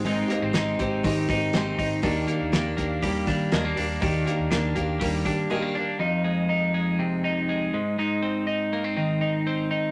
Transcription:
<<
  \new Staff \with { instrumentName = "Steel-string acoustic guitar" } { \time 4/4 \key ees \major \tempo 4 = 121 <aes c' ees' g'>8 <c' ees' g'>8 <aes c' ees' g'>8 <c' ees' g'>8 <aes c' ees' g'>8 <c' ees' g'>8 <aes c' ees' g'>8 <c' ees' g'>8 | <ees bes d' g'>8 <bes d' g'>8 <ees bes d' g'>8 <bes d' g'>8 <ees bes d' g'>8 <bes d' g'>8 <ees bes d' g'>8 <bes d' g'>8 | <ees bes d' g'>8 <bes d' g'>8 <ees bes d' g'>8 <bes d' g'>8 <ees bes d' g'>8 <bes d' g'>8 <ees bes d' g'>8 <bes d' g'>8 | r1 |
r1 | }
  \new Staff \with { instrumentName = "Clean electric guitar" } { \time 4/4 \key ees \major <aes, ees'>8 bes16 c'16 ees'8 c'8 ees8 ees'8 c'8 ees'8 | <ees d'>8 bes8 d'8 bes8 g8 d'8 aes16 bes16 d'8 | <ees d'>8 bes8 d'8 bes8 g8 d'8 aes16 bes16 d'8 | <f, ees'>8 aes8 ees'8 aes8 c8 ees'8 aes8 aes,8 |
<aes, ees'>8 c'8 ees'8 bes16 c'16 ees8 ees'8 c'8 ees'8 | }
  \new Staff \with { instrumentName = "Fingered electric bass" } { \clef bass \time 4/4 \key ees \major aes,,8 r16 aes,,16 aes,,8 aes,,8 aes,,8 aes,8 aes,,8 aes,,8 | ees,8 r16 ees,16 ees,8 ees,8 ees,8 ees8 ees,8 ees,8 | ees,8 r16 ees,16 ees,8 ees,8 ees,8 ees8 r4 | r1 |
r1 | }
  \new DrumStaff \with { instrumentName = "Drums" } \drummode { \time 4/4 <hho hhp>8 <hho hhp>8 <hho hhp sn>8 <hho hhp bd>8 <hho hhp bd>8 <hho hhp bd sn>8 <hho hhp sn>8 <hho hhp bd>8 | <hho hhp bd>8 <hho hhp>8 <hho hhp sn>8 <hho hhp bd>8 <hho hhp bd>8 <hho hhp bd sn>8 <hho hhp sn>8 <hho hhp>8 | <hho hhp bd>8 <hho hhp>8 <hho hhp sn>8 <hho hhp bd>8 <hho hhp bd>8 <hho hhp bd>8 r4 | r4 r4 r4 r4 |
r4 r4 r4 r4 | }
>>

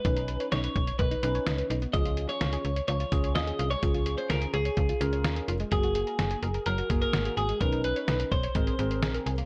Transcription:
<<
  \new Staff \with { instrumentName = "Clean electric guitar" } { \time 4/4 \key des \major \tempo 4 = 127 ces''4 des''4 ces''4. r8 | ees''8. des''4~ des''16 des''4 ees''8. des''16~ | des''8. c''16 bes'8 aes'2 r8 | aes'2 bes'8. bes'8. aes'8 |
bes'8 ces''4 c''4. r4 | }
  \new Staff \with { instrumentName = "Synth arpeggio sound" } { \time 4/4 \key des \major ees16 ees'16 ces''16 des''16 ees'16 ces''16 des''16 des''16 ees16 ees'16 ces''16 des''16 ees'16 ces''16 ees'16 ces'16 | f16 f'16 aes'16 des''16 f'16 aes'16 des''16 des''16 f16 f'16 aes'16 des''16 f'16 aes'16 f'16 aes16 | f16 f'16 aes'16 des''16 f'16 aes'16 des''16 des''16 f16 f'16 aes'16 des''16 f'16 aes'16 f'16 aes16 | ges16 ges'16 aes'16 bes'16 ges'16 aes'16 bes'16 bes'16 ges16 ges'16 aes'16 bes'16 ges'16 aes'16 ges'16 aes16 |
ees16 ees'16 ces''16 des''16 ees'16 ces''16 des''16 des''16 aes16 aes'16 bes'16 c''16 aes'16 bes'16 aes'16 bes16 | }
  \new Staff \with { instrumentName = "Tine electric piano" } { \time 4/4 \key des \major <des' ees' ces''>4. r4 <des' ees' ces''>4 r8 | <des' f' aes'>4. r4 <des' f' aes'>4 r8 | <des' f' aes'>4. r4 <des' f' bes'>4 r8 | <bes ges' aes'>4. r4 <bes ges' aes'>4 r8 |
<des' ees' ces''>4. r8 <c' aes' bes'>8 <c' aes' bes'>4 r8 | }
  \new Staff \with { instrumentName = "FM bass" } { \clef bass \time 4/4 \key des \major ces,4 ces,8 ces,8 ces,8 ces,8 des,8 ces,8 | des,4 des,8 des,8 des,8 des,8 ees,8 c,8 | des,4 des,8 des,8 des,8 des,8 ees,8 f,,8 | ges,,4 ges,,8 ges,,8 ges,,8 ges,,8 aes,,8 aes,,8 |
ces,4 ces,8 ces,8 aes,,8 aes,,8 bes,,8 c,8 | }
  \new DrumStaff \with { instrumentName = "Drums" } \drummode { \time 4/4 <hh bd>16 hh16 hh16 hh16 <hh sn>16 hh16 <hh bd>16 hh16 <hh bd>16 hh16 hh16 hh16 <hh sn>16 hh16 hh16 hh16 | <hh bd>16 hh16 hh16 hh16 <hh sn>16 hh16 hh16 hh16 hh16 hh16 <hh bd>16 hh16 <hh sn>16 hh16 hh16 hh16 | <hh bd>16 hh16 hh16 hh16 <hh sn>16 hh16 hh16 hh16 <hh bd>16 hh16 hh16 hh16 <hh sn>16 hh16 hh16 hh16 | <hh bd>16 hh16 hh16 hh16 <hh sn>16 hh16 hh16 hh16 hh16 hh16 <hh bd>16 hh16 <hh sn>16 hh16 hh16 hh16 |
<hh bd>16 hh16 hh16 hh16 <hh sn>16 hh16 <hh bd>16 hh16 <hh bd>16 hh16 hh16 hh16 <hh sn>16 hh16 hh16 hh16 | }
>>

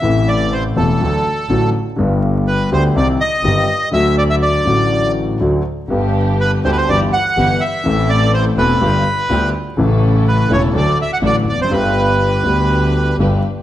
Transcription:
<<
  \new Staff \with { instrumentName = "Bandoneon" } { \time 4/4 \key g \major \tempo 4 = 123 e''8 d''8 c''8 a'2 r8 | r4 b'8 c''8 d''8 ees''4. | e''8 d''16 e''16 d''4. r4. | r4 b'8 c''32 b'32 c''16 d''8 fis''4 e''8~ |
e''8 d''8 c''8 b'2 r8 | r4 b'8 cis''8 d''8 e''16 fis''16 d''8 d''16 c''16 | b'2. r4 | }
  \new Staff \with { instrumentName = "String section" } { \time 4/4 \key g \major r1 | r1 | r1 | <b d' g'>4. <b d' g'>8 <b e' g'>8 r8 <b e' g'>8 r8 |
<c' e' a'>4. <c' e' a'>8 <b f' g'>8 r8 <b f' g'>8 r8 | <cis' e' a'>4. <cis' e' a'>8 <d' fis' a'>8 r8 <d' fis' a'>8 r8 | <d' g' b'>4. <d' g' b'>4. <d' g' b'>8 r8 | }
  \new Staff \with { instrumentName = "Grand piano" } { \clef bass \time 4/4 \key g \major <a,, a, c e a e'>4. <e,, e, c e a e'>8 <d, d fis a fis'>8 r8 <a,, a, d fis a fis'>8 r8 | <g,, g, d g b g'>4. <d, d g b g'>8 <c, c ees g c' g'>8 r8 <g,, g, ees g c' g'>8 r8 | <d, d fis a fis'>4. <a,, a, d fis a fis'>4. <d, d fis a fis'>8 r8 | <g,, g, d g b g'>4. <d, d g b g'>8 <g,, g, e g b g'>8 r8 <g,, g, e g b g'>8 r8 |
<a,, a, e a c' a'>4. <e,, e, e a c' a'>8 <g,, g, d g b f'>8 r8 <d, d g b f'>8 r8 | <a,, a, cis e a e'>4. <e,, e, cis e a e'>8 <d, d fis a fis'>8 r8 <a,, a, d fis a fis'>8 r32 e,32 f,32 fis,32 | <g,, g, d g b g'>4. <d, d g b g'>4. <g,, g, d g b g'>8 r8 | }
  \new Staff \with { instrumentName = "Double bass" } { \clef bass \time 4/4 \key g \major a,,4. e,,8 d,8 r8 a,,8 r8 | g,,4. d,8 c,8 r8 g,,8 r8 | d,4. a,,4. d,8 r8 | g,,4. d,8 g,,8 r8 g,,8 r8 |
a,,4. e,,8 g,,8 r8 d,8 r8 | a,,4. e,,8 d,8 r8 a,,8 f,,8 | g,,4. d,4. g,,8 r8 | }
>>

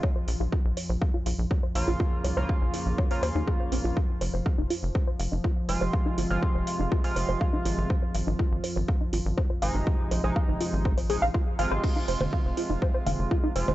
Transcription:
<<
  \new Staff \with { instrumentName = "Synth arpeggio sound" } { \time 4/4 \key f \minor \tempo 4 = 122 des''16 c''16 f''16 f'16 f'16 r16 des''16 c''16 f''16 f'16 f'16 r16 des''16 c''16 f''16 f'16 | f'16 r16 des''16 c''16 f''16 f'16 f'16 r16 des''16 c''16 c''16 ees'16 aes'16 r16 c'16 f'16 | f'16 r16 c''16 c''16 f''16 ees'16 f'16 r16 c''16 c''16 f''16 ees'16 f'16 r16 c''16 c''16 | f''16 ees'16 f'16 r16 c''16 c''16 f''16 ees'16 f'16 r16 c''16 c''16 f''16 ees'16 f'16 r16 |
c''16 c''16 f''16 ees'16 f'16 r16 c''16 c''16 f''16 ees'16 f'16 r16 c''16 c''16 f''16 ees'16 | f'16 r16 c''16 c''16 f''16 ees'16 f'16 r16 c''16 c''16 aes'16 f''16 f'16 r16 f''16 c''16 | f'16 ees'16 c''16 c''16 f''16 r16 f'16 ees'16 c''16 c''16 f''16 r16 f'16 ees'16 c''16 c''16 | }
  \new Staff \with { instrumentName = "Analog polysynth" } { \clef bass \time 4/4 \key f \minor r2. r8 <des bes f'>8~ | <des bes f'>8. <des bes f'>4. <des bes f'>4.~ <des bes f'>16 | r2. r8 <c aes f'>8~ | <c aes f'>8. <c aes f'>4. <c aes f'>4.~ <c aes f'>16 |
r2. r8 <c aes ees'>8~ | <c aes ees'>8. <c aes ees'>4. r16 <c aes ees'>16 r8. <c aes f'>8~ | <c aes f'>2.~ <c aes f'>8 <c aes f'>8 | }
  \new Staff \with { instrumentName = "Synth drone" } { \clef bass \time 4/4 \key f \minor <f, f>1~ | <f, f>1~ | <f, f>1~ | <f, f>1~ |
<f, f>1~ | <f, f>1 | <f, f>1 | }
  \new Staff \with { instrumentName = "Analog synth bass" } { \clef bass \time 4/4 \key f \minor r8 bes,,16 bes,,16 r16 bes,,16 r16 bes,,16 r8 bes,,16 bes,,16 r8 bes,,16 bes,,16 | r8 c,16 c,16 r16 bes,,16 r16 bes,,16 r8 ees,16 ees,16 r8 bes,,16 bes,,16 | r8 f,,16 f,,16 r16 f,,16 r16 f,,16 r8 f,,16 f,,16 r8 f,,16 f,,16 | r8 g,,16 g,,16 r16 f,,16 r16 f,,16 r8 f,,16 f,,16 r8 aes,,16 aes,,16 |
r8 aes,,16 aes,,16 r16 aes,,16 r16 aes,,16 r8 aes,,16 aes,,16 r8 aes,,16 aes,,16 | r8 bes,,16 bes,,16 r16 aes,,16 r16 aes,,8. bes,,16 bes,,16 r8 aes,,16 aes,,16 | r8 f,,16 f,,16 r16 f,,16 r16 f,,16 r8 f,,16 f,,16 r8 f,,16 f,,16 | }
  \new DrumStaff \with { instrumentName = "Drums" } \drummode { \time 4/4 bd8 hho8 bd8 hho8 bd8 hho8 bd8 hho8 | bd8 hho8 bd8 hho8 bd16 hho16 hho8 bd8 hho8 | bd8 hho8 bd8 hho8 bd8 hho8 bd8 hho8 | bd8 hho8 bd8 hho8 bd16 hho16 hho8 bd8 hho8 |
bd8 hho8 bd8 hho8 bd8 hho8 bd8 hho8 | bd8 hho8 bd8 hho8 bd16 hho16 hho8 bd8 hho8 | <cymc bd>8 hho16 cgl16 bd8 hho8 bd8 <cgl hho>8 bd8 hho16 cgl16 | }
>>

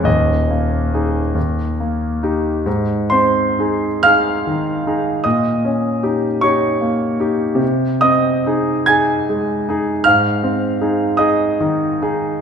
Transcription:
\new Staff \with { instrumentName = "Grand piano" } { \time 6/8 \key aes \major \tempo 4. = 48 << { ees''2~ ees''8 r8 | r8 <c'' c'''>4 <f'' f'''>4. | <ees'' ees'''>4. <des'' des'''>4. | r8 <ees'' ees'''>4 <aes'' aes'''>4. |
<f'' f'''>4. <ees'' ees'''>4. | } \\ { <ees,, ees,>8 bes8 <ees' aes'>8 ees,8 bes8 <ees' g'>8 | aes,8 c'8 <ees' aes'>8 <ees' aes'>8 ees8 <ees' aes'>8 | bes,8 des'8 <ees' g'>8 <ees' g'>8 bes8 <ees' g'>8 | c8 c'8 <ees' aes'>8 <ees' aes'>8 aes8 <ees' aes'>8 |
aes,8 c'8 <ees' aes'>8 <ees' aes'>8 ees8 <ees' aes'>8 | } >> }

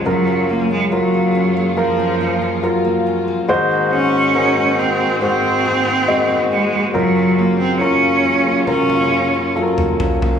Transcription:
<<
  \new Staff \with { instrumentName = "Grand piano" } { \time 4/4 \key ges \lydian \tempo 4 = 70 <ges f' bes'>4 <ges f' bes'>4 <f f' bes'>4 <ges f' bes'>4 | <aes ges' c''>4 <aes ges' bes'>4 <aes ges' c''>4 <aes ges' ees''>4 | <ges f' bes'>4 <ges f' bes'>4 <ges f' bes'>4 <ges f' a' bes'>4 | }
  \new Staff \with { instrumentName = "Grand piano" } { \clef bass \time 4/4 \key ges \lydian <ges, des>1 | <aes, ees>1 | <ges, des>1 | }
  \new Staff \with { instrumentName = "Steel-string acoustic guitar" } { \time 4/4 \key ges \lydian ges16 des'16 f'16 des'16 f'16 bes16 des'16 bes8 des'16 f'16 des'16 f'16 bes16 des'16 bes16 | aes,16 c'16 aes'8 aes'16 aes16 c'16 aes16 aes,16 c'16 aes'16 c'16 aes'16 aes16 c'16 aes16 | ges16 des'16 f'16 des'16 f'16 bes16 des'16 bes16 ges16 des'16 f'16 des'16 f'16 bes16 des'16 bes16 | }
  \new Staff \with { instrumentName = "Cello" } { \time 4/4 \key ges \lydian ges8 bes16 aes16 ges4 f4 r4 | r8 des'4 c'8 c'4. aes8 | ges8 bes16 c'16 des'4 des'4 r4 | }
  \new Staff \with { instrumentName = "String section" } { \clef bass \time 4/4 \key ges \lydian <ges, des aes bes f'>1 | <aes, ees bes ges' c''>1 | <ges, des aes f'>1 | }
  \new DrumStaff \with { instrumentName = "Drums" } \drummode { \time 4/4 r4 r4 r4 r4 | r4 r4 r4 r4 | r4 r4 tommh16 tommh8. r16 toml16 tomfh16 tomfh16 | }
>>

